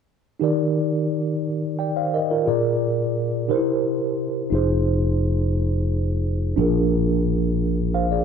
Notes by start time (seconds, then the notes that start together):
0.40 D#3 D#4 G4 A#4
0.44 D5
1.79 D5 G5
1.96 C5 F5
2.14 A#4 D#5
2.31 F4 A#4
2.46 A#2 F4 G#4 A#4 D5
3.48 C3 D#4 G4 A#4 C5
3.55 E4
4.50 F1 D#4 F4 G#4
4.55 C5
6.56 A#1 A#2 D4 F4 G#4
6.61 A#4
7.94 C5 F5
8.12 G#4 D5